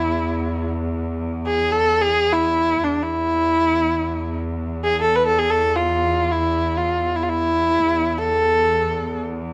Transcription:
Already playing: E2 E4
1.47 G#4
1.72 A4
2.02 G#4
2.33 E4
2.84 E2 D4
3.03 E4
4.84 G#4
5.01 A4
5.16 B4
5.27 A4
5.39 G#4
5.50 A4
5.76 F4
6.32 E4
6.77 F4
7.16 E4
7.23 F4
7.29 E4
7.85 E2
8.18 A4

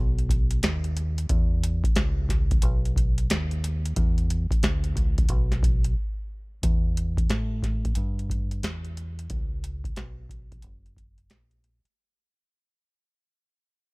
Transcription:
Already playing: B1
0.19 closed hi-hat
0.29 kick, closed hi-hat
0.51 closed hi-hat
0.63 D#2, snare, closed hi-hat
0.84 closed hi-hat
0.97 closed hi-hat
1.18 closed hi-hat
1.29 E2, kick, closed hi-hat
1.64 closed hi-hat
1.84 muted fingered electric bass stroke, kick, closed hi-hat
1.96 C#2, snare, closed hi-hat
2.29 kick, snare, closed hi-hat
2.51 kick, closed hi-hat
2.62 B1, closed hi-hat
2.85 closed hi-hat
2.96 kick, closed hi-hat
3.18 closed hi-hat
3.30 D#2, snare, closed hi-hat
3.51 closed hi-hat
3.64 closed hi-hat
3.86 closed hi-hat
3.96 E2, kick, closed hi-hat
4.18 closed hi-hat
4.30 closed hi-hat
4.51 muted fingered electric bass stroke, kick, closed hi-hat
4.63 D2, snare, closed hi-hat
4.84 closed hi-hat
4.96 C#2, kick, closed hi-hat
5.18 kick, closed hi-hat
5.29 B1, kick, closed hi-hat
5.52 snare, closed hi-hat
5.63 kick, closed hi-hat
5.84 closed hi-hat
6.63 E2, kick, closed hi-hat
6.97 closed hi-hat
7.17 kick, closed hi-hat
7.30 A2, snare, closed hi-hat
7.63 kick, snare, closed hi-hat
7.85 kick, closed hi-hat
7.95 G2, closed hi-hat
8.19 closed hi-hat
8.30 kick, closed hi-hat
8.51 closed hi-hat
8.63 E2, snare, closed hi-hat
8.85 closed hi-hat
8.97 closed hi-hat
9.19 closed hi-hat
9.30 C#2, kick, closed hi-hat
9.64 closed hi-hat
9.84 kick, closed hi-hat
9.96 B1, snare, closed hi-hat
10.29 kick, closed hi-hat
10.52 kick, closed hi-hat
10.62 F#1, closed hi-hat
10.86 closed hi-hat
10.97 kick, closed hi-hat
11.18 closed hi-hat
11.30 A#1, snare, closed hi-hat
11.51 closed hi-hat
11.64 closed hi-hat
11.85 muted fingered electric bass stroke, closed hi-hat

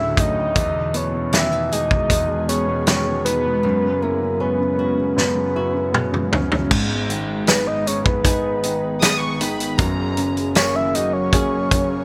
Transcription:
Already playing: D2 A2 D3 F#3 A3 C#4 F#4 E5
0.17 F#3 C#4 D#5, kick, closed hi-hat
0.37 A2
0.55 E2 E3 G#3 B3 G#4, kick, closed hi-hat
0.75 B2
0.94 B3 C#5, closed hi-hat
1.13 B2
1.32 D#3 C#4 E5, snare, closed hi-hat
1.52 B2 D#4
1.71 G#3 G#4 D#5, closed hi-hat
1.90 B2, kick
2.09 E2 B3, kick, closed hi-hat
2.28 B2
2.48 B3 G#4 C#5, closed hi-hat
2.67 B2
2.86 D#3 B3 C#5, snare, closed hi-hat
3.07 B2
3.25 G#3 D#4 B4, closed hi-hat
3.45 B2
3.63 F#2 C#4 F#4
3.84 C#3
4.02 B3 E4 A#4
4.21 C#3
4.40 B3 C#4 B4
4.60 C#3
4.79 C#4 F#4
4.98 C#3
5.16 F#2 B3 B4, snare
5.35 C#3
5.55 E4 F#4
5.74 C#3
5.92 B3, mid tom
6.12 C#3, mid tom
6.32 C#4, floor tom
6.51 C#3, floor tom
6.70 G#1 G#2 D#3 B3 G#4 B4, kick, crash
7.09 D#3 D#4, closed hi-hat
7.47 B3 G#4 B4, snare, closed hi-hat, tambourine
7.67 D#5
7.86 D#4 G#4 C#5, closed hi-hat
8.04 B4, kick
8.24 D#4 G#4, kick, closed hi-hat
8.63 D#3 D#4, closed hi-hat
9.01 B3 G#4 D#6, snare, closed hi-hat, tambourine
9.20 C#6
9.40 D#3 D#4 B5, closed hi-hat
9.60 closed hi-hat
9.78 F#1 F#2 F#3 A#3 C#5 A#5, kick, closed hi-hat
10.17 C#3 C#4, closed hi-hat
10.37 closed hi-hat
10.55 A#3 G#4 C#5, snare, closed hi-hat, tambourine
10.75 E5
10.95 C#4 F#4 D#5, closed hi-hat
11.13 C#5
11.33 C#4 G#4, kick, closed hi-hat
11.71 C#3 C#4, kick, closed hi-hat

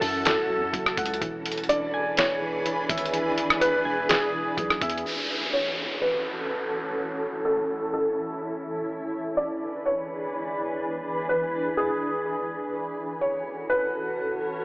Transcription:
Already playing: E3 F#3 C#4 E4 F#4 A4 F#5
0.01 F#2 A5, open hi-hat
0.25 A4, snare, closed hi-hat
0.38 E1
0.50 F#3
0.56 F#2
0.73 F#1 F#3, kick, closed hi-hat
0.86 cross-stick
0.97 C#2 F#5, kick, closed hi-hat
1.06 closed hi-hat
1.14 closed hi-hat
1.21 E1 E3 D4 G#4 B4, kick, closed hi-hat
1.46 closed hi-hat
1.52 closed hi-hat
1.58 closed hi-hat
1.64 closed hi-hat
1.69 D4 D5, closed hi-hat
1.94 G#5
2.17 C#5, snare, closed hi-hat
2.42 E3
2.66 E3, closed hi-hat
2.89 G#1 E5, kick, closed hi-hat
2.98 closed hi-hat
3.06 closed hi-hat
3.13 E3, closed hi-hat
3.38 closed hi-hat
3.50 cross-stick
3.61 D4 B4, closed hi-hat
3.85 E1 G#5
4.09 G#4, snare, closed hi-hat
4.34 E3
4.57 B1 E3, kick, closed hi-hat
4.70 cross-stick
4.81 E2 E5, kick, closed hi-hat
4.90 closed hi-hat
4.98 closed hi-hat
5.06 E3 C#4 F#4 A4, downlifter
5.53 C#5
6.02 B4
6.98 E4
7.45 A4
7.94 A4
8.89 E3 D4 G#4 B4
9.37 D5
9.86 C#5
11.29 B4
11.77 G#4
12.73 E3 C#4 F#4 A4
13.21 C#5
13.70 B4

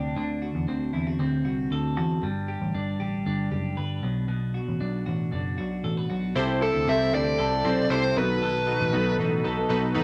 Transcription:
Already playing: D2 C3 C4 D4 G4
0.17 D2 D3
0.42 F#4
0.55 E2
0.68 D2 C4
0.93 E2 E4
1.07 F#4
1.19 D2 C4
1.45 C2 F#4
1.71 D2 A4
1.97 E2 F#4
2.23 G1 G2
2.48 G4
2.62 A1
2.75 G1 D4
3.00 A1 G4
3.26 G1 D4
3.52 F#1 G4
3.77 G1 B4
4.03 B1 B2
4.28 B2
4.54 F#4
4.68 A1
4.81 B1 D4
5.06 A1 F#4
5.32 F#1 D4
5.58 B1 F#4
5.84 A1 A4
5.97 B4
6.10 B1 F#4
6.35 C2 C3 G3 C4 E4 G4 A4 C5
6.61 E4 G4 A4 C5
6.74 D2
6.87 C2 C3 G3 C4 E4 G4 A4 C5 E5
7.13 D2 G3 C4 E4 G4 A4 C5 D5
7.38 C2 E4 G4 A4 C5
7.51 C4 E4 A4
7.64 B1 C4 E4 G4 A4 C5
7.90 C2 E4 G4 A4 C5
8.03 C4 E4 A4
8.15 B1 B2 D#3 F#3 B3 D#4 F#4 A4 B4
8.42 B2 A4
8.67 D#4 F#4 A4 B4
8.81 A1
8.92 B1 B2 D#3 F#3 B3 D#4 F#4 A4 B4
9.18 A1 F#3 B3 D#4 F#4 A4 B4
9.44 B1 D#4 F#4 A4 B4
9.57 F#3 B3 D#4 A4
9.69 B1 B3 D#4 F#4 A4 B4
9.94 A1 D#4 F#4 A4 B4

